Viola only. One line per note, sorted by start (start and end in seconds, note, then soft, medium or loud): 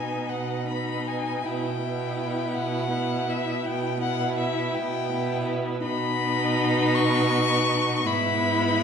0.00 0.67 B3 soft
0.69 1.44 B3 soft
1.46 1.82 B3 soft
1.83 2.90 B3 soft
2.93 4.01 B3 soft
4.04 5.10 B3 soft
5.13 5.84 B3 soft
5.85 8.02 B3 medium
8.05 8.83 B3 medium